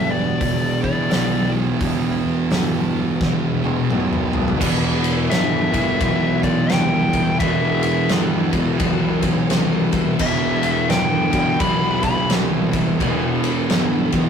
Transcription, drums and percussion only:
0.41 kick, open hi-hat
0.84 kick
1.11 snare, open hi-hat
1.81 kick, open hi-hat
2.51 snare, open hi-hat
3.21 kick, snare
3.64 high tom
3.90 mid tom
4.13 mid tom
4.33 floor tom
4.48 floor tom
4.61 kick, crash
5.04 ride
5.31 snare, ride
5.74 kick, ride
6.01 kick, ride
6.43 kick, ride
6.70 snare, ride
7.13 kick, ride
7.40 kick, ride
7.83 ride
8.09 snare, ride
8.53 kick, ride
8.80 kick, ride
9.23 kick, ride
9.50 snare, ride
9.93 kick, ride
10.19 kick, crash
10.63 ride
10.90 snare, ride
11.33 kick, ride
11.60 kick, ride
12.03 kick, ride
12.30 snare, ride
12.73 kick, ride
13.00 kick, ride
13.44 ride
13.70 snare, ride
14.12 kick, ride

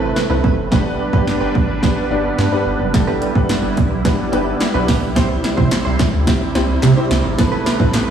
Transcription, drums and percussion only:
0.16 snare
0.44 kick
0.72 kick, snare
1.13 kick
1.27 snare
1.55 kick
1.83 kick, snare
2.38 snare
2.94 kick, snare, closed hi-hat
3.22 closed hi-hat
3.35 kick
3.49 snare, closed hi-hat
3.77 kick, closed hi-hat
4.05 kick, snare, closed hi-hat
4.33 closed hi-hat
4.60 snare, closed hi-hat
4.88 kick, snare, open hi-hat
5.16 kick, snare, closed hi-hat
5.44 snare, closed hi-hat
5.58 kick
5.71 snare, clap, closed hi-hat
5.99 kick, snare, closed hi-hat
6.27 kick, snare, closed hi-hat
6.55 snare, closed hi-hat
6.83 snare, clap, closed hi-hat
7.11 snare, closed hi-hat
7.38 kick, snare, closed hi-hat
7.66 snare, closed hi-hat
7.80 kick
7.94 snare, clap, closed hi-hat

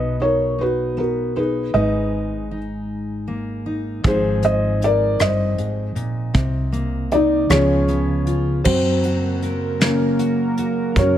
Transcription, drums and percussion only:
4.04 kick, closed hi-hat
4.42 closed hi-hat
4.82 closed hi-hat
5.20 cross-stick, closed hi-hat
5.58 closed hi-hat
5.96 closed hi-hat
6.34 kick, closed hi-hat
6.73 closed hi-hat
7.12 closed hi-hat
7.50 cross-stick, closed hi-hat
7.89 closed hi-hat
8.27 closed hi-hat
8.65 kick, crash
9.04 closed hi-hat
9.42 closed hi-hat
9.81 snare, closed hi-hat
10.19 closed hi-hat
10.57 closed hi-hat
10.96 kick, closed hi-hat

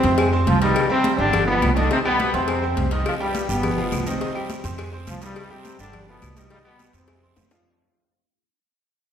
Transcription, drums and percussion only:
0.03 cowbell, high conga
0.18 cowbell, high conga, claves
0.33 high conga
0.47 cowbell, high conga
0.62 cowbell, high conga
0.76 cowbell, claves
0.90 high conga
1.04 cowbell, high conga
1.19 high conga
1.33 cowbell, high conga, low conga, claves
1.48 high conga
1.62 cowbell, high conga, claves
1.76 cowbell, high conga
1.91 cowbell, high conga
2.05 high conga, claves
2.20 cowbell, high conga
2.34 cowbell, high conga
2.48 cowbell, high conga, claves
2.63 high conga
2.77 cowbell, high conga
2.91 cowbell
3.06 cowbell, high conga, long guiro, claves
3.21 high conga
3.35 cowbell, high conga, short guiro
3.49 high conga, short guiro
3.63 cowbell, high conga, low conga, long guiro, claves
3.78 high conga, low conga
3.92 cowbell, high conga, short guiro, claves
4.06 cowbell, high conga, short guiro
4.21 cowbell, high conga, long guiro
4.35 high conga, claves
4.50 cowbell, high conga, short guiro
4.64 cowbell, high conga, short guiro
4.78 cowbell, high conga, long guiro, claves
4.93 high conga
5.07 cowbell, high conga, short guiro
5.22 cowbell, short guiro
5.36 cowbell, high conga, long guiro, claves
5.51 high conga
5.65 cowbell, high conga, short guiro
5.79 high conga, short guiro
5.93 cowbell, high conga, low conga, long guiro, claves
6.08 high conga
6.22 cowbell, high conga, short guiro, claves
6.36 cowbell, high conga, short guiro
6.50 cowbell, high conga, long guiro
6.65 high conga, claves
6.79 cowbell, high conga, short guiro
6.93 cowbell, high conga, short guiro
7.08 cowbell, high bongo, high conga, long guiro, claves
7.23 high conga
7.36 cowbell, low bongo, high conga, short guiro
7.51 cowbell, low bongo, high conga, short guiro

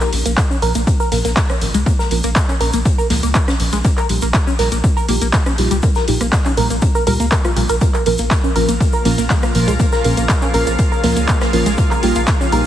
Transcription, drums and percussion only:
0.01 clap, closed hi-hat, shaker
0.13 closed hi-hat, open hi-hat
0.26 closed hi-hat, shaker
0.37 kick, snare, clap, closed hi-hat, shaker
0.51 shaker
0.62 closed hi-hat, open hi-hat
0.75 closed hi-hat, shaker
0.87 kick, closed hi-hat, shaker
1.00 shaker
1.12 snare, closed hi-hat, open hi-hat
1.25 snare, closed hi-hat, shaker
1.36 kick, snare, clap, closed hi-hat, open hi-hat, shaker
1.49 cross-stick, shaker
1.61 snare, closed hi-hat, open hi-hat
1.74 closed hi-hat, shaker
1.86 kick, closed hi-hat, shaker
2.00 snare, shaker
2.11 closed hi-hat, open hi-hat
2.23 closed hi-hat, shaker
2.35 kick, snare, clap, closed hi-hat, shaker
2.49 clap, shaker
2.61 closed hi-hat, open hi-hat
2.73 closed hi-hat, shaker
2.85 kick, closed hi-hat, shaker
2.98 shaker
3.10 snare, open hi-hat
3.23 closed hi-hat, shaker
3.35 kick, snare, clap, closed hi-hat, shaker
3.48 cross-stick, snare, open hi-hat, shaker
3.60 open hi-hat
3.72 snare, closed hi-hat, shaker
3.84 kick, closed hi-hat, shaker
3.97 clap, closed hi-hat, shaker
4.09 closed hi-hat, open hi-hat
4.22 closed hi-hat, shaker
4.33 kick, snare, clap, closed hi-hat, shaker
4.47 shaker
4.59 snare, closed hi-hat, open hi-hat
4.72 closed hi-hat, shaker
4.84 kick, closed hi-hat, shaker
4.97 closed hi-hat, shaker
5.08 closed hi-hat, open hi-hat
5.21 closed hi-hat, shaker
5.33 kick, snare, clap, closed hi-hat, open hi-hat, shaker
5.46 cross-stick, shaker
5.58 snare, closed hi-hat, open hi-hat
5.71 closed hi-hat, shaker
5.82 kick, closed hi-hat, shaker
5.95 snare, shaker
6.07 closed hi-hat, open hi-hat
6.21 cross-stick, closed hi-hat, shaker
6.32 kick, snare, clap, closed hi-hat, shaker
6.45 clap, shaker
6.57 closed hi-hat, open hi-hat
6.70 closed hi-hat, shaker
6.82 kick, closed hi-hat, shaker
6.95 shaker
7.07 closed hi-hat, open hi-hat
7.20 closed hi-hat, shaker
7.32 kick, snare, clap, closed hi-hat, shaker
7.45 cross-stick, shaker
7.56 closed hi-hat, open hi-hat
7.69 closed hi-hat, shaker
7.81 kick, closed hi-hat, shaker
7.94 clap, closed hi-hat, shaker
8.06 closed hi-hat, open hi-hat
8.18 closed hi-hat, shaker
8.31 kick, snare, clap, closed hi-hat, shaker
8.44 shaker
8.56 closed hi-hat, open hi-hat
8.69 closed hi-hat, shaker
8.80 kick, closed hi-hat, shaker
8.92 shaker
9.05 snare, closed hi-hat, open hi-hat
9.18 snare, closed hi-hat, shaker
9.30 kick, snare, clap, closed hi-hat, open hi-hat, shaker
9.42 cross-stick, shaker
9.55 snare, closed hi-hat, open hi-hat
9.67 closed hi-hat, shaker
9.79 kick, closed hi-hat, shaker
9.92 snare, shaker
10.04 closed hi-hat, open hi-hat
10.17 closed hi-hat, shaker
10.29 kick, snare, clap, closed hi-hat, shaker
10.42 clap, shaker
10.53 closed hi-hat, open hi-hat
10.67 closed hi-hat, shaker
10.78 kick, closed hi-hat, shaker
10.92 shaker
11.03 snare, open hi-hat
11.17 closed hi-hat, shaker
11.28 kick, snare, clap, closed hi-hat, shaker
11.41 cross-stick, snare, open hi-hat, shaker
11.53 open hi-hat
11.66 snare, closed hi-hat, shaker
11.78 kick, closed hi-hat, shaker
11.91 clap, closed hi-hat, shaker
12.03 closed hi-hat, open hi-hat
12.15 closed hi-hat, shaker
12.27 kick, snare, clap, closed hi-hat, shaker
12.41 shaker
12.52 closed hi-hat, open hi-hat

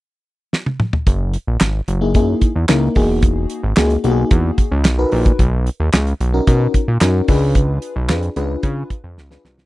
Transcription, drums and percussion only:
0.53 snare
0.66 high tom
0.80 mid tom
0.93 floor tom
1.07 kick, closed hi-hat
1.34 closed hi-hat
1.60 snare, clap, closed hi-hat
1.88 closed hi-hat
2.14 kick, closed hi-hat
2.41 kick, closed hi-hat
2.69 snare, clap, closed hi-hat
2.95 kick, open hi-hat
3.22 kick, closed hi-hat
3.50 closed hi-hat
3.76 snare, clap, closed hi-hat
3.90 closed hi-hat
4.04 closed hi-hat
4.31 kick, closed hi-hat
4.58 kick, closed hi-hat
4.85 snare, clap, closed hi-hat
5.12 open hi-hat
5.25 kick, closed hi-hat
5.39 kick, closed hi-hat
5.67 closed hi-hat
5.93 snare, clap, closed hi-hat
6.07 closed hi-hat
6.21 closed hi-hat
6.47 kick, closed hi-hat
6.74 kick, closed hi-hat
7.01 snare, clap, closed hi-hat
7.28 kick, open hi-hat
7.55 kick, closed hi-hat
7.82 closed hi-hat
8.09 snare, clap, closed hi-hat
8.23 closed hi-hat
8.36 closed hi-hat
8.63 kick, closed hi-hat
8.90 kick, closed hi-hat
9.18 snare
9.31 snare
9.45 snare
9.58 snare

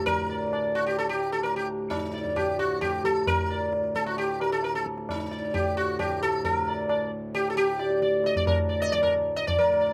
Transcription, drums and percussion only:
0.07 tabla tin, tabla ge
0.53 tabla na
0.77 tabla na
0.99 tabla tin
1.45 tabla na
1.91 tabla na, tabla ge
2.14 tabla te
2.25 tabla ge
2.36 tabla na, tabla ge
2.59 tabla te
2.82 tabla na, tabla ge
3.04 tabla ge
3.27 tabla tin, tabla ge
3.73 tabla te
3.84 tabla te
3.95 tabla ke
4.06 tabla te
4.17 tabla tin
4.40 tabla na
4.63 tabla te
4.74 tabla te
4.86 tabla ke
4.98 tabla te
5.09 tabla na, tabla ge
5.31 tabla te
5.54 tabla tin, tabla ge
6.00 tabla na, tabla ge
6.22 tabla te
6.44 tabla tin, tabla ge
6.89 tabla na
7.35 tabla tin
7.79 tabla te
7.90 tabla te
8.02 tabla ke
8.13 tabla te
8.24 tabla te
8.36 tabla tin, tabla ge
8.47 tabla na, tabla ge
8.82 tabla te
8.93 tabla tin, tabla ge
9.03 tabla na, tabla ge
9.37 tabla te
9.48 tabla tin, tabla ge
9.59 tabla tin, tabla ge

